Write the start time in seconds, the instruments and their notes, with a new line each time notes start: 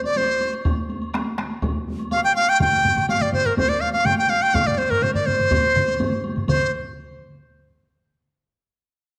0.04 dizi D5, taiko high, high woodblock
0.16 dizi C5, taiko high, high woodblock
0.28 taiko high
0.41 taiko high, high woodblock
0.53 taiko high, high woodblock
0.65 taiko, taiko high, high woodblock
0.78 taiko high
0.90 taiko high, high woodblock
1.02 taiko high, high woodblock
1.14 taiko rim, taiko high, high woodblock
1.27 taiko high
1.38 taiko rim, taiko high, high woodblock
1.50 taiko high, high woodblock
1.62 taiko, taiko high, high woodblock
1.76 taiko high
1.88 taiko high
1.99 taiko high, high woodblock
2.11 dizi F5, taiko high, high woodblock
2.24 dizi G5, taiko high
2.36 dizi F5, taiko high, high woodblock
2.48 dizi G5, taiko high, high woodblock
2.60 dizi G5, taiko, taiko low-mid, taiko mid, taiko high, high woodblock
2.73 taiko high
2.85 taiko low-mid, taiko mid, taiko high, high woodblock
2.96 taiko low-mid, taiko mid, taiko high, high woodblock
3.09 dizi F5, taiko low-mid, taiko mid, taiko high, high woodblock
3.21 dizi D5, taiko low-mid, taiko mid, taiko high
3.33 dizi C5, taiko low-mid, taiko mid, taiko high, high woodblock
3.45 dizi A#4, taiko low-mid, taiko mid, taiko high, high woodblock
3.57 dizi C5, taiko, taiko high, high woodblock
3.69 dizi D5, taiko high
3.81 dizi F5, taiko high, high woodblock
3.93 dizi F5, taiko high, high woodblock
4.05 dizi G5, taiko low-mid, taiko mid, taiko high, high woodblock
4.17 dizi G5, taiko high
4.29 dizi F5, taiko high
4.42 dizi G5, taiko high, high woodblock
4.54 dizi F5, taiko, taiko low-mid, taiko mid, taiko high, high woodblock
4.66 dizi D5, taiko low-mid, taiko mid, taiko high
4.78 dizi C5, taiko high, high woodblock
4.90 dizi A#4, taiko low-mid, taiko mid, taiko high, high woodblock
5.02 dizi C5, taiko low-mid, taiko mid, taiko high, high woodblock
5.14 dizi D5, taiko low-mid, taiko mid, taiko high
5.26 dizi C5, taiko low-mid, taiko mid, taiko high, high woodblock
5.39 taiko low-mid, taiko mid, taiko high, high woodblock
5.51 taiko, taiko low-mid, taiko mid, taiko high, high woodblock
5.63 taiko high
5.76 taiko low-mid, taiko mid, taiko high, high woodblock
5.88 taiko high, high woodblock
6.00 taiko low-mid, taiko mid, taiko high, high woodblock
6.12 taiko high
6.24 taiko high, high woodblock
6.36 taiko low-mid, taiko mid, taiko high, high woodblock
6.48 dizi C5, taiko, taiko low-mid, taiko mid, taiko high, high woodblock